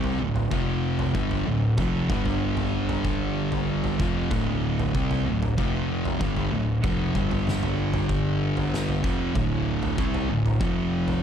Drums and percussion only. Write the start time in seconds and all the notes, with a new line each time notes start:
0.04 floor tom
0.36 floor tom
0.51 kick
0.99 floor tom
1.15 kick
1.31 floor tom
1.78 kick, floor tom
2.10 kick
2.25 floor tom
2.57 floor tom
2.89 floor tom
3.05 kick
3.52 floor tom
3.84 floor tom
4.00 kick
4.31 kick, floor tom
4.79 floor tom
4.95 kick
5.11 floor tom
5.42 floor tom
5.58 kick
6.05 floor tom
6.21 kick
6.36 floor tom
6.84 kick, floor tom
7.15 kick, mid tom
7.31 floor tom
7.47 snare, mid tom
7.63 floor tom
7.94 floor tom, mid tom
8.09 kick
8.57 floor tom
8.74 snare
8.88 floor tom
9.04 kick
9.35 kick, floor tom
9.83 floor tom
9.98 kick
10.14 floor tom
10.46 floor tom
10.61 kick
11.08 floor tom